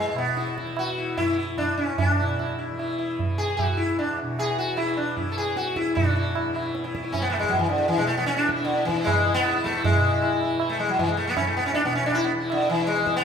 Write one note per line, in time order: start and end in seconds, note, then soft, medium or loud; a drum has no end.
0.00 1.68 E2 medium
0.00 0.12 B2 medium
0.00 0.65 E3 medium
0.00 0.15 G#3 medium
0.13 2.19 B2 medium
0.13 tabla na medium
0.18 0.55 B3 medium
0.37 0.55 E4 soft
0.37 tabla te medium
0.47 tabla te medium
0.57 0.76 E4 soft
0.57 tabla ke medium
0.65 1.19 E3 medium
0.65 tabla te medium
0.77 1.20 F#4 medium
0.77 tabla na medium
0.98 1.16 E4 soft
1.17 2.71 E3 medium
1.17 1.37 E4 loud
1.17 tabla tin medium
1.17 tabla ge medium
1.38 1.57 E4 soft
1.58 1.77 D4 medium
1.58 tabla na medium
1.58 tabla ge medium
1.68 3.71 E2 medium
1.78 1.98 C#4 medium
1.98 2.54 D4 medium
1.98 tabla tin loud
1.98 tabla ge medium
2.19 4.22 B2 medium
2.19 2.38 E4 soft
2.39 2.57 E4 soft
2.39 tabla na medium
2.59 2.77 E4 soft
2.71 3.22 E3 medium
2.79 2.97 E4 soft
2.79 tabla na medium
2.98 3.17 E4 soft
2.98 tabla na medium
3.19 4.72 E3 medium
3.19 tabla tin medium
3.19 tabla ge medium
3.38 3.56 G#4 medium
3.57 3.78 F#4 medium
3.57 tabla na medium
3.57 tabla ge medium
3.72 5.73 E2 medium
3.77 3.98 E4 medium
3.98 4.17 D4 medium
3.98 tabla tin medium
4.19 5.95 B2 medium
4.19 tabla na medium
4.39 4.58 G#4 loud
4.39 tabla na medium
4.58 4.78 F#4 medium
4.72 5.23 E3 medium
4.77 4.97 E4 medium
4.77 tabla na medium
4.97 5.16 D4 medium
5.16 5.35 E4 soft
5.16 tabla tin medium
5.16 tabla ge medium
5.23 6.45 E3 medium
5.32 5.37 A4 medium
5.38 5.56 G#4 medium
5.56 5.77 F#4 medium
5.56 tabla te medium
5.66 tabla te medium
5.74 7.45 E2 medium
5.74 5.94 E4 medium
5.74 tabla ke medium
5.87 tabla te medium
5.95 7.96 B2 medium
5.95 6.50 D4 medium
5.95 6.05 E4 soft
5.95 tabla tin loud
5.95 tabla ge medium
6.06 6.15 E4 soft
6.16 6.34 E4 soft
6.35 6.53 E4 soft
6.35 tabla na medium
6.45 6.97 E3 medium
6.54 6.64 E4 soft
6.54 tabla na medium
6.65 6.83 E4 soft
6.75 tabla te medium
6.84 6.93 E4 soft
6.84 tabla te medium
6.94 8.44 E3 medium
6.94 7.01 E4 soft
6.94 tabla ke medium
7.03 7.21 E4 soft
7.03 tabla te medium
7.12 7.23 C#4 medium
7.12 tabla tin medium
7.12 tabla ge medium
7.22 7.29 B3 medium
7.30 7.39 A3 medium
7.30 tabla na medium
7.39 7.51 G#3 medium
7.43 9.42 E2 medium
7.43 tabla ke medium
7.49 7.58 F#3 medium
7.53 tabla na medium
7.53 tabla ge medium
7.59 7.68 E3 medium
7.69 7.77 D3 medium
7.69 tabla te medium
7.78 7.88 D3 medium
7.88 8.00 E3 medium
7.88 tabla tin medium
7.96 9.91 B2 medium
7.96 8.06 G#3 medium
8.07 8.17 A3 loud
8.17 8.26 B3 loud
8.26 8.36 C#4 loud
8.26 tabla te medium
8.37 8.47 D4 loud
8.37 tabla te medium
8.44 8.93 E3 medium
8.44 8.55 E4 soft
8.49 tabla ke medium
8.56 8.75 E4 soft
8.56 tabla te medium
8.65 8.85 D3 medium
8.65 tabla te medium
8.76 8.94 E4 soft
8.76 tabla te medium
8.85 9.06 E3 medium
8.85 tabla ke medium
8.93 10.40 E3 medium
8.93 9.14 E4 soft
8.98 tabla te medium
9.04 9.34 G#3 loud
9.04 tabla na medium
9.04 tabla ge medium
9.15 9.24 E4 soft
9.26 9.44 E4 soft
9.26 tabla ge medium
9.34 9.64 B3 loud
9.42 11.36 E2 medium
9.42 9.54 E4 soft
9.47 tabla te loud
9.55 9.73 E4 soft
9.55 tabla te medium
9.64 9.84 A3 loud
9.64 tabla ke medium
9.75 9.93 E4 soft
9.75 tabla te medium
9.84 10.38 G#3 loud
9.84 tabla tin loud
9.84 tabla ge loud
9.92 11.83 B2 medium
9.92 10.01 E4 soft
10.02 10.12 E4 soft
10.13 10.20 E4 soft
10.22 10.31 E4 soft
10.22 tabla na medium
10.32 10.41 E4 soft
10.40 10.88 E3 medium
10.40 10.60 E4 soft
10.40 tabla na medium
10.60 10.78 E4 soft
10.60 tabla na medium
10.69 10.76 A3 medium
10.78 10.89 G#3 medium
10.78 10.80 A3 medium
10.78 tabla na medium
10.88 12.33 E3 medium
10.88 10.99 F#3 medium
10.99 11.09 E3 medium
10.99 tabla tin medium
10.99 tabla ge medium
11.08 11.17 G#3 medium
11.17 11.26 A3 medium
11.27 11.36 B3 medium
11.36 13.24 E2 medium
11.36 11.46 C#4 loud
11.36 tabla na medium
11.36 tabla ge medium
11.47 11.56 A3 medium
11.57 11.66 B3 loud
11.66 11.74 C#4 loud
11.74 11.84 D4 loud
11.74 tabla tin medium
11.84 13.24 B2 medium
11.84 11.93 B3 medium
11.93 12.04 C#4 loud
11.93 tabla na medium
12.06 12.14 D4 loud
12.12 12.23 E4 loud
12.12 tabla na medium
12.24 12.32 B3 medium
12.33 12.81 E3 medium
12.41 12.59 E4 soft
12.50 12.69 D3 medium
12.50 tabla na medium
12.60 12.76 E4 soft
12.68 12.89 E3 medium
12.68 tabla na medium
12.78 13.24 E3 medium
12.78 12.95 E4 soft
12.87 13.16 G#3 loud
12.87 tabla te medium
12.97 13.05 E4 soft
12.97 tabla te medium
13.07 13.23 E4 soft
13.07 tabla ke medium
13.16 13.24 B3 loud
13.16 tabla te medium